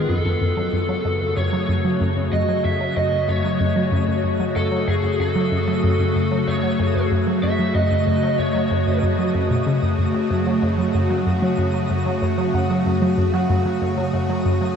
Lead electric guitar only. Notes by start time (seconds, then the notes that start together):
0.10 A4
1.37 C#5
2.33 D#5
2.65 E5
2.97 D#5
3.29 C#5
4.56 A4
4.88 G#4
5.20 A4
6.48 C#5
7.43 E5
7.75 D#5
8.39 C#5